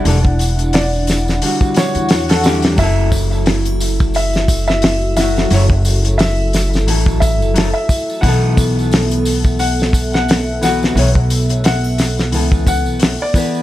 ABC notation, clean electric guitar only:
X:1
M:4/4
L:1/8
Q:"Swing 16ths" 1/4=88
K:F#phr
V:1 name="Clean electric guitar"
[D,G,A] z3 [D,G,F]2 z [D,G,G] | [F,EA]6- [F,EA] [F,EF] | [F,Ec] z3 [F,EA]2 [F,EA] z | [E,B,A]6- [E,B,A] [E,B,F] |
[E,B,c] z3 [E,B,A]2 z [E,B,B] |]